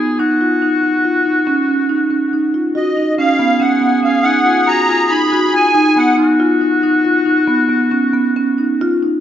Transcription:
0, 0, Header, 1, 4, 480
1, 0, Start_track
1, 0, Tempo, 427960
1, 209, Time_signature, 7, 2, 24, 8
1, 7408, Tempo, 438596
1, 10251, End_track
2, 0, Start_track
2, 0, Title_t, "Accordion"
2, 0, Program_c, 0, 21
2, 3095, Note_on_c, 0, 75, 83
2, 3535, Note_off_c, 0, 75, 0
2, 3569, Note_on_c, 0, 77, 111
2, 4044, Note_on_c, 0, 78, 87
2, 4059, Note_off_c, 0, 77, 0
2, 4488, Note_off_c, 0, 78, 0
2, 4528, Note_on_c, 0, 77, 94
2, 4745, Note_on_c, 0, 78, 101
2, 4771, Note_off_c, 0, 77, 0
2, 5243, Note_on_c, 0, 82, 122
2, 5248, Note_off_c, 0, 78, 0
2, 5717, Note_on_c, 0, 83, 117
2, 5737, Note_off_c, 0, 82, 0
2, 6212, Note_on_c, 0, 80, 125
2, 6214, Note_off_c, 0, 83, 0
2, 6702, Note_on_c, 0, 78, 90
2, 6704, Note_off_c, 0, 80, 0
2, 6917, Note_off_c, 0, 78, 0
2, 10251, End_track
3, 0, Start_track
3, 0, Title_t, "Oboe"
3, 0, Program_c, 1, 68
3, 0, Note_on_c, 1, 68, 127
3, 208, Note_on_c, 1, 66, 114
3, 225, Note_off_c, 1, 68, 0
3, 3264, Note_off_c, 1, 66, 0
3, 3571, Note_on_c, 1, 68, 118
3, 6885, Note_off_c, 1, 68, 0
3, 6929, Note_on_c, 1, 66, 123
3, 10003, Note_off_c, 1, 66, 0
3, 10251, End_track
4, 0, Start_track
4, 0, Title_t, "Marimba"
4, 0, Program_c, 2, 12
4, 217, Note_on_c, 2, 63, 91
4, 337, Note_off_c, 2, 63, 0
4, 458, Note_on_c, 2, 65, 90
4, 578, Note_off_c, 2, 65, 0
4, 697, Note_on_c, 2, 63, 86
4, 817, Note_off_c, 2, 63, 0
4, 937, Note_on_c, 2, 63, 75
4, 1057, Note_off_c, 2, 63, 0
4, 1176, Note_on_c, 2, 65, 88
4, 1295, Note_off_c, 2, 65, 0
4, 1412, Note_on_c, 2, 63, 74
4, 1532, Note_off_c, 2, 63, 0
4, 1649, Note_on_c, 2, 61, 97
4, 1770, Note_off_c, 2, 61, 0
4, 1891, Note_on_c, 2, 61, 71
4, 2011, Note_off_c, 2, 61, 0
4, 2125, Note_on_c, 2, 63, 82
4, 2246, Note_off_c, 2, 63, 0
4, 2362, Note_on_c, 2, 61, 75
4, 2485, Note_off_c, 2, 61, 0
4, 2615, Note_on_c, 2, 63, 78
4, 2734, Note_off_c, 2, 63, 0
4, 2851, Note_on_c, 2, 65, 75
4, 2971, Note_off_c, 2, 65, 0
4, 3086, Note_on_c, 2, 66, 101
4, 3206, Note_off_c, 2, 66, 0
4, 3331, Note_on_c, 2, 63, 78
4, 3450, Note_off_c, 2, 63, 0
4, 3573, Note_on_c, 2, 61, 96
4, 3692, Note_off_c, 2, 61, 0
4, 3806, Note_on_c, 2, 59, 88
4, 3927, Note_off_c, 2, 59, 0
4, 4035, Note_on_c, 2, 61, 99
4, 4158, Note_off_c, 2, 61, 0
4, 4277, Note_on_c, 2, 59, 78
4, 4399, Note_off_c, 2, 59, 0
4, 4517, Note_on_c, 2, 61, 85
4, 4639, Note_off_c, 2, 61, 0
4, 4755, Note_on_c, 2, 63, 72
4, 4878, Note_off_c, 2, 63, 0
4, 4996, Note_on_c, 2, 65, 82
4, 5119, Note_off_c, 2, 65, 0
4, 5242, Note_on_c, 2, 66, 77
4, 5364, Note_off_c, 2, 66, 0
4, 5482, Note_on_c, 2, 65, 90
4, 5604, Note_off_c, 2, 65, 0
4, 5731, Note_on_c, 2, 63, 86
4, 5850, Note_off_c, 2, 63, 0
4, 5968, Note_on_c, 2, 66, 90
4, 6089, Note_off_c, 2, 66, 0
4, 6208, Note_on_c, 2, 65, 80
4, 6329, Note_off_c, 2, 65, 0
4, 6443, Note_on_c, 2, 63, 113
4, 6566, Note_off_c, 2, 63, 0
4, 6689, Note_on_c, 2, 59, 82
4, 6809, Note_off_c, 2, 59, 0
4, 6929, Note_on_c, 2, 63, 108
4, 7050, Note_off_c, 2, 63, 0
4, 7177, Note_on_c, 2, 65, 101
4, 7296, Note_off_c, 2, 65, 0
4, 7417, Note_on_c, 2, 63, 83
4, 7534, Note_off_c, 2, 63, 0
4, 7656, Note_on_c, 2, 63, 87
4, 7773, Note_off_c, 2, 63, 0
4, 7892, Note_on_c, 2, 65, 91
4, 8009, Note_off_c, 2, 65, 0
4, 8120, Note_on_c, 2, 63, 88
4, 8239, Note_off_c, 2, 63, 0
4, 8360, Note_on_c, 2, 59, 96
4, 8480, Note_off_c, 2, 59, 0
4, 8598, Note_on_c, 2, 59, 77
4, 8719, Note_off_c, 2, 59, 0
4, 8841, Note_on_c, 2, 61, 90
4, 8961, Note_off_c, 2, 61, 0
4, 9082, Note_on_c, 2, 59, 85
4, 9202, Note_off_c, 2, 59, 0
4, 9331, Note_on_c, 2, 61, 94
4, 9450, Note_off_c, 2, 61, 0
4, 9573, Note_on_c, 2, 63, 71
4, 9693, Note_off_c, 2, 63, 0
4, 9825, Note_on_c, 2, 65, 114
4, 9942, Note_off_c, 2, 65, 0
4, 10059, Note_on_c, 2, 63, 83
4, 10178, Note_off_c, 2, 63, 0
4, 10251, End_track
0, 0, End_of_file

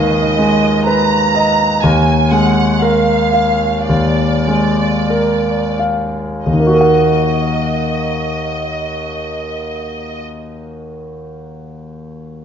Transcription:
0, 0, Header, 1, 3, 480
1, 0, Start_track
1, 0, Key_signature, -6, "minor"
1, 0, Tempo, 947867
1, 918, Time_signature, 4, 2, 24, 8
1, 918, Tempo, 1000000
1, 1398, Tempo, 1067616
1, 1878, Tempo, 1221996
1, 2358, Tempo, 1360544
1, 2838, Tempo, 1229508
1, 4278, Tempo, 1265823
1, 5149, End_track
2, 0, Start_track
2, 0, Title_t, "Violin section"
2, 0, Program_c, 0, 48
2, 0, Note_on_c, 0, 75, 61
2, 433, Note_on_c, 0, 82, 72
2, 434, Note_off_c, 0, 75, 0
2, 907, Note_off_c, 0, 82, 0
2, 921, Note_on_c, 0, 80, 61
2, 1154, Note_on_c, 0, 78, 56
2, 1157, Note_off_c, 0, 80, 0
2, 1394, Note_on_c, 0, 77, 60
2, 1398, Note_off_c, 0, 78, 0
2, 1872, Note_on_c, 0, 74, 54
2, 1876, Note_off_c, 0, 77, 0
2, 2587, Note_off_c, 0, 74, 0
2, 2834, Note_on_c, 0, 75, 42
2, 4291, Note_off_c, 0, 75, 0
2, 5149, End_track
3, 0, Start_track
3, 0, Title_t, "Grand piano"
3, 0, Program_c, 1, 0
3, 0, Control_c, 1, 64, 127
3, 0, Note_on_c, 1, 39, 51
3, 0, Note_on_c, 1, 51, 41
3, 0, Note_on_c, 1, 56, 43
3, 0, Note_on_c, 1, 71, 45
3, 0, Note_on_c, 1, 75, 46
3, 99, Note_off_c, 1, 75, 0
3, 196, Note_off_c, 1, 56, 0
3, 196, Note_on_c, 1, 56, 42
3, 341, Note_off_c, 1, 51, 0
3, 439, Note_off_c, 1, 71, 0
3, 439, Note_on_c, 1, 71, 45
3, 582, Note_off_c, 1, 56, 0
3, 682, Note_on_c, 1, 75, 41
3, 822, Note_off_c, 1, 71, 0
3, 921, Note_off_c, 1, 75, 0
3, 928, Note_off_c, 1, 39, 0
3, 928, Control_c, 1, 64, 0
3, 928, Note_on_c, 1, 39, 50
3, 1023, Control_c, 1, 64, 127
3, 1159, Note_on_c, 1, 56, 41
3, 1401, Note_on_c, 1, 70, 39
3, 1539, Note_off_c, 1, 56, 0
3, 1634, Note_on_c, 1, 77, 44
3, 1779, Note_off_c, 1, 70, 0
3, 1865, Note_off_c, 1, 39, 0
3, 1882, Note_on_c, 1, 39, 40
3, 2015, Note_off_c, 1, 77, 0
3, 2112, Note_on_c, 1, 56, 34
3, 2357, Note_on_c, 1, 70, 34
3, 2504, Note_off_c, 1, 56, 0
3, 2601, Note_on_c, 1, 77, 32
3, 2748, Note_off_c, 1, 70, 0
3, 2826, Note_off_c, 1, 39, 0
3, 2837, Note_off_c, 1, 77, 0
3, 2837, Note_on_c, 1, 39, 28
3, 2850, Control_c, 1, 64, 0
3, 2864, Note_on_c, 1, 51, 31
3, 2891, Note_on_c, 1, 58, 30
3, 2917, Note_on_c, 1, 66, 30
3, 2946, Note_on_c, 1, 70, 27
3, 2962, Control_c, 1, 64, 127
3, 2973, Note_on_c, 1, 78, 28
3, 4295, Note_off_c, 1, 39, 0
3, 4321, Note_off_c, 1, 51, 0
3, 4348, Note_off_c, 1, 58, 0
3, 4373, Note_off_c, 1, 66, 0
3, 4400, Note_off_c, 1, 70, 0
3, 4427, Note_off_c, 1, 78, 0
3, 5149, End_track
0, 0, End_of_file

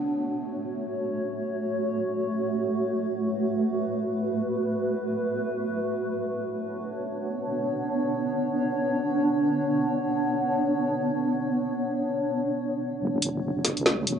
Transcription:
0, 0, Header, 1, 4, 480
1, 0, Start_track
1, 0, Key_signature, 3, "minor"
1, 0, Tempo, 500000
1, 13625, End_track
2, 0, Start_track
2, 0, Title_t, "Ambient pad"
2, 0, Program_c, 0, 92
2, 0, Note_on_c, 0, 57, 79
2, 0, Note_on_c, 0, 66, 73
2, 0, Note_on_c, 0, 73, 85
2, 2723, Note_off_c, 0, 73, 0
2, 2757, Note_on_c, 0, 71, 89
2, 5962, Note_off_c, 0, 57, 0
2, 5962, Note_off_c, 0, 66, 0
2, 5969, Note_off_c, 0, 71, 0
2, 5999, Note_on_c, 0, 62, 76
2, 6000, Note_on_c, 0, 59, 78
2, 6000, Note_on_c, 0, 73, 87
2, 12452, Note_off_c, 0, 62, 0
2, 12452, Note_off_c, 0, 73, 0
2, 12453, Note_off_c, 0, 59, 0
2, 12489, Note_on_c, 0, 66, 73
2, 12489, Note_on_c, 0, 73, 90
2, 12490, Note_on_c, 0, 57, 82
2, 13625, Note_off_c, 0, 57, 0
2, 13625, Note_off_c, 0, 66, 0
2, 13625, Note_off_c, 0, 73, 0
2, 13625, End_track
3, 0, Start_track
3, 0, Title_t, "Wobble bass"
3, 0, Program_c, 1, 39
3, 12491, Note_on_c, 1, 30, 93
3, 13219, Note_on_c, 1, 37, 80
3, 13234, Note_off_c, 1, 30, 0
3, 13496, Note_off_c, 1, 37, 0
3, 13509, Note_on_c, 1, 28, 95
3, 13625, Note_off_c, 1, 28, 0
3, 13625, End_track
4, 0, Start_track
4, 0, Title_t, "Drums"
4, 12693, Note_on_c, 9, 42, 75
4, 12789, Note_off_c, 9, 42, 0
4, 13100, Note_on_c, 9, 38, 35
4, 13100, Note_on_c, 9, 42, 78
4, 13196, Note_off_c, 9, 38, 0
4, 13196, Note_off_c, 9, 42, 0
4, 13219, Note_on_c, 9, 42, 36
4, 13305, Note_on_c, 9, 38, 114
4, 13315, Note_off_c, 9, 42, 0
4, 13401, Note_off_c, 9, 38, 0
4, 13508, Note_on_c, 9, 42, 77
4, 13604, Note_off_c, 9, 42, 0
4, 13625, End_track
0, 0, End_of_file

